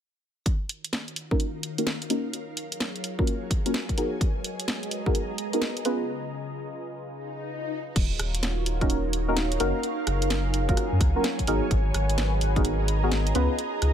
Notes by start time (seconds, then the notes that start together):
0.46 D#3 D#4 F4 F#4 A#4 C#5, kick, closed hi-hat
0.61 A#4
0.69 open hi-hat
0.78 F5
0.85 closed hi-hat
0.93 snare
1.08 closed hi-hat
1.16 open hi-hat
1.31 A#3 C#4 D#4 F#4 A#4, kick
1.40 closed hi-hat
1.63 open hi-hat
1.78 A#3 C#4 D#4 F#4 A#4, closed hi-hat
1.87 snare
2.02 closed hi-hat
2.10 A#3 C#4 D#4 F#4 A#4, open hi-hat
2.33 F#3 G#4, closed hi-hat
2.57 open hi-hat
2.70 C#5, closed hi-hat
2.80 snare
2.96 closed hi-hat
3.04 open hi-hat
3.08 G#5
3.19 A#3 C#4 F4 F#4 A#4, kick
3.27 closed hi-hat
3.51 kick, open hi-hat
3.66 A#3 C#4 F4 F#4 A#4, closed hi-hat
3.74 snare
3.89 kick, closed hi-hat
3.98 G#3 B3 D#4 F#4 G#4 A#4 B4 D#5, open hi-hat
4.21 kick, closed hi-hat
4.44 open hi-hat
4.55 D#5 A#5
4.60 closed hi-hat
4.68 snare
4.83 closed hi-hat
4.91 open hi-hat
5.06 B3 D#4 F#4 G#4 A#4, kick
5.15 closed hi-hat
5.38 open hi-hat
5.53 B3 D#4 F#4 G#4 A#4, closed hi-hat
5.62 snare
5.77 closed hi-hat
5.85 C#3 B3 C#4 F4 G#4 B4, open hi-hat
7.02 swell
7.96 D#1 D#4 F4 F#4 A#4 C#5, kick, closed hi-hat, crash
8.19 D#1, cross-stick, open hi-hat
8.35 closed hi-hat
8.43 A#4, snare, closed hi-hat
8.66 open hi-hat
8.81 A#3 C#4 D#4 F#4 A#4 F5, kick, closed hi-hat
8.90 D#1, closed hi-hat
9.13 open hi-hat
9.28 A#3 C#4 D#4 F#4 A#4
9.37 snare, closed hi-hat
9.52 closed hi-hat
9.60 F#1 A#3 C#4 D#4 F#4 A#4, open hi-hat
9.83 F#3 F4 G#4, closed hi-hat
10.07 F#1, cross-stick, open hi-hat
10.15 G#5
10.22 closed hi-hat
10.30 snare, closed hi-hat
10.46 C#5
10.54 open hi-hat
10.69 A#3 C#4 F4 F#4 A#4, kick, closed hi-hat
10.77 cross-stick, closed hi-hat
10.92 F#2
11.01 C#2, kick, cross-stick, open hi-hat
11.16 A#3 C#4 F4 F#4 A#4
11.24 snare, closed hi-hat
11.39 kick, closed hi-hat
11.47 G#1 B3 D#4 F#4 G#4 A#4 B4, open hi-hat
11.71 G#1, kick, closed hi-hat
11.94 G#1, cross-stick, open hi-hat
12.10 D#5, closed hi-hat
12.18 snare, closed hi-hat
12.35 A#5
12.41 open hi-hat
12.56 B3 D#4 F#4 G#4 A#4, kick, closed hi-hat
12.65 G#1, closed hi-hat
12.88 open hi-hat
13.03 B3 D#4 F#4 G#4 A#4
13.12 snare, closed hi-hat
13.27 closed hi-hat
13.35 C#2 B3 C#4 F4 G#4 B4, open hi-hat
13.59 closed hi-hat
13.82 C#2, cross-stick, open hi-hat